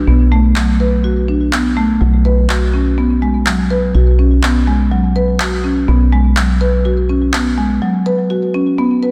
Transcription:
0.07 fm bass B1, marimba B3
0.32 marimba A3
0.56 marimba F#3, clap
0.80 marimba B4
1.04 marimba F#4
1.28 marimba D4
1.52 marimba B3, clap
1.77 marimba A3
2.01 fm bass B1, marimba F#3
2.25 marimba B4
2.49 marimba F#4, clap
2.74 marimba C#4
2.98 marimba B3
3.22 marimba G#3
3.46 marimba F#3, clap
3.70 marimba B4
3.95 fm bass B1, marimba F#4
4.19 marimba C#4
4.43 marimba B3, clap
4.67 marimba G#3
4.91 marimba F#3
5.16 marimba B4
5.40 marimba F#4, clap
5.64 marimba C#4
5.88 fm bass B1, marimba B3
6.13 marimba G#3
6.37 marimba F#3, clap
6.61 marimba B4
6.85 marimba F#4
7.09 marimba C#4
7.33 marimba B3, clap
7.58 marimba G#3
7.82 marimba F#3
8.06 marimba B4
8.30 marimba F#4
8.54 marimba C#4
8.78 marimba B3
9.03 marimba B4

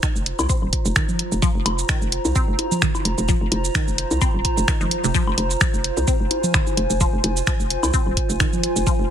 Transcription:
Already playing: ambient pad F4 C5 A#5
0.03 synth arpeggio sound D#3, finger snap, kick, shaker
0.16 fm bass F1, shaker
0.26 closed hi-hat
0.39 fm bass C2, low bongo, high woodblock, shaker
0.49 synth arpeggio sound C4, kick, shaker
0.62 fm bass D#1
0.73 kick, closed hi-hat
0.85 fm bass F1, shaker
0.96 synth arpeggio sound D#3, finger snap, kick, shaker
1.09 low conga, shaker
1.19 closed hi-hat
1.32 fm bass F1, shaker
1.42 synth arpeggio sound F3, kick, shaker
1.55 fm bass F1
1.66 fm bass F1, closed hi-hat, high woodblock
1.79 shaker
1.89 synth arpeggio sound D#3, finger snap, kick, shaker
2.02 fm bass F1, shaker
2.12 closed hi-hat
2.25 fm bass C2, low bongo, shaker
2.35 synth arpeggio sound C4, kick, shaker
2.48 fm bass F1
2.59 closed hi-hat, low bongo
2.72 low conga, shaker
2.82 synth arpeggio sound D#3, finger snap, kick, shaker
2.95 low bongo, high woodblock, shaker
3.05 fm bass F1, closed hi-hat
3.18 fm bass F1, shaker
3.28 synth arpeggio sound F3, kick, shaker
3.41 fm bass F1
3.52 fm bass F1, closed hi-hat, low bongo
3.65 shaker
3.75 synth arpeggio sound D#3, finger snap, kick, shaker
3.88 fm bass F1, shaker
3.98 closed hi-hat
4.11 fm bass C2, low bongo, shaker
4.21 synth arpeggio sound C4, kick, high woodblock, shaker
4.34 fm bass D#1
4.45 kick, closed hi-hat
4.57 fm bass F1, shaker
4.68 synth arpeggio sound D#3, finger snap, kick, shaker
4.81 fm bass F1, synth arpeggio sound D#3, low conga, shaker
4.91 closed hi-hat
5.04 fm bass F1, synth arpeggio sound C3, shaker
5.14 synth arpeggio sound F3, kick, shaker
5.27 fm bass F1, high woodblock
5.38 fm bass F1, closed hi-hat
5.51 shaker
5.61 synth arpeggio sound F3, finger snap, kick, shaker
5.74 fm bass F1, shaker
5.84 closed hi-hat
5.97 fm bass C2, low bongo, shaker
6.08 synth arpeggio sound C4, ambient pad G#5, kick, shaker
6.20 fm bass F1
6.31 closed hi-hat, low bongo
6.44 low conga, shaker
6.54 synth arpeggio sound D#3, finger snap, kick, high woodblock, shaker
6.67 low bongo, shaker
6.77 fm bass F1, closed hi-hat
6.90 fm bass F1, shaker
7.01 synth arpeggio sound F3, kick, shaker
7.13 fm bass F1
7.24 fm bass F1, closed hi-hat, low bongo
7.37 shaker
7.47 synth arpeggio sound F3, finger snap, kick, shaker
7.60 fm bass F1, shaker
7.70 closed hi-hat
7.83 fm bass C2, low bongo, high woodblock, shaker
7.94 synth arpeggio sound C4, kick, shaker
8.06 fm bass D#1
8.17 kick, closed hi-hat
8.30 fm bass F1, shaker
8.40 synth arpeggio sound D#3, finger snap, kick, shaker
8.53 low conga, shaker
8.63 closed hi-hat
8.76 fm bass F1, shaker
8.87 synth arpeggio sound F3, kick, shaker
8.99 fm bass F1

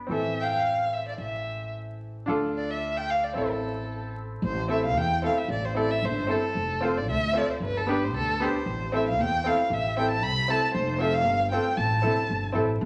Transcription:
0.07 upright bass A1, upright piano E3 C4
0.11 upright piano A4, violin E5
0.40 violin F5 G5
0.46 violin G5
0.53 violin F5
0.93 violin E5
1.08 violin D5
1.18 upright bass A1, violin E5
2.26 upright bass D2, upright piano D4 F4 A4
2.57 violin D5
2.71 violin E5
2.97 violin G5
3.10 violin F5
3.23 violin D5
3.34 upright bass A1, upright piano C4 E4 A4, violin A4
4.42 upright bass A1, violin C5
4.68 upright piano C4 E4 A4, violin E5
4.85 violin F5
4.95 upright bass E2, violin G5
5.22 upright piano C4 E4 A4, violin F5
5.38 violin E5
5.48 upright bass A1, violin D5
5.65 violin C5
5.75 upright piano C4 E4 A4
5.79 violin D5
5.90 violin E5
6.02 upright bass G1, violin C5
6.27 upright piano C4 E4 A4, violin A4
6.55 upright bass F1
6.81 upright piano C4 F4 A4, violin C5
6.98 violin D5
7.09 upright bass D2, violin E5
7.33 upright piano C4 F4 A4, violin D5
7.50 violin C5
7.60 upright bass G1, violin B4
7.77 violin A4
7.87 upright piano B3 D4 G4, violin B4
8.04 violin C5
8.14 upright bass D2, violin A4
8.40 upright piano B3 D4 G4, violin C5
8.66 upright bass A1
8.92 upright piano C4 E4 A4, violin E5
9.08 violin F5
9.19 upright bass E2, violin G5
9.44 upright piano C4 E4 A4, violin F5
9.64 violin F5
9.70 upright bass A1, violin E5
9.97 upright piano C4 E4 A4, violin G5
10.11 violin A5
10.23 upright bass C2, violin B5
10.48 upright piano C4 E4 A4, violin A5
10.74 upright bass F1, violin C5
10.99 upright piano C4 F4 A4, violin E5
11.14 violin F5
11.26 upright bass G1
11.51 upright piano C4 F4 A4, violin G5
11.77 upright bass A1, violin A5
12.02 upright bass E1, upright piano C4 E4 A4
12.30 upright bass G1
12.53 upright bass A1, upright piano C4 E4 A4
12.81 upright bass A1

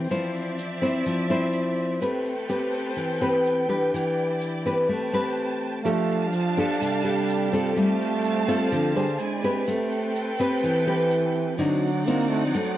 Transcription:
Already playing: violin section C4
0.11 nylon-string guitar F3 C4 E4 C5, violin section D5 E5, shaker
0.36 shaker
0.59 shaker
0.82 nylon-string guitar C4 E4 C5, shaker
1.06 nylon-string guitar F3, shaker
1.30 nylon-string guitar C4 E4 C5, shaker
1.53 shaker
1.77 shaker
2.00 nylon-string guitar A3 C4 G4 B4, violin section C4 A4 B4 G5, shaker
2.26 shaker
2.49 nylon-string guitar C4 G4 B4, shaker
2.74 shaker
2.97 nylon-string guitar E3, shaker
3.21 nylon-string guitar C4 G4 B4, shaker
3.46 shaker
3.69 nylon-string guitar D4 G4 B4, shaker
3.94 nylon-string guitar E3, violin section E4 D5, shaker
4.18 shaker
4.41 shaker
4.66 nylon-string guitar C4 G4 B4, shaker
4.89 nylon-string guitar A3, violin section C4 B4 G5 A5
5.13 nylon-string guitar C4 G4 B4
5.84 nylon-string guitar F3 D4 G4 A4, trombone A3, violin section D4 G4 F5 A5, shaker
6.10 shaker
6.32 trombone F3, shaker
6.57 nylon-string guitar D4 G4 A4, shaker
6.81 nylon-string guitar C3, trombone G3, shaker
7.05 nylon-string guitar D4 G4 A4, shaker
7.29 shaker
7.53 nylon-string guitar C4 F4 A4, shaker
7.76 nylon-string guitar G3, trombone A3, violin section C4 F5 A5, shaker
8.01 shaker
8.24 shaker
8.48 nylon-string guitar C4 F4 A4, shaker
8.72 nylon-string guitar D3, trombone F3, shaker
8.96 trombone G3, nylon-string guitar D4 G#4 C5, shaker
9.19 trombone G#3, violin section C4 E4 D5 G#5, shaker
9.43 nylon-string guitar C4 G4 B4, shaker
9.67 trombone A3, nylon-string guitar A3, violin section A4 B4 G5, shaker
9.91 shaker
10.16 shaker
10.39 nylon-string guitar C4 G4 B4, shaker
10.63 trombone E3, nylon-string guitar E3, shaker
10.87 nylon-string guitar C4 G4 B4, shaker
11.11 shaker
11.34 shaker
11.58 nylon-string guitar D3 C4 D#4 F#4, trombone F#3, violin section C4 D#4 D5 F#5, shaker
11.82 shaker
12.06 trombone A#3, nylon-string guitar C4 D#4 F#4, shaker
12.29 trombone A3, shaker
12.46 trombone F3
12.54 trombone F#3, nylon-string guitar A3, shaker

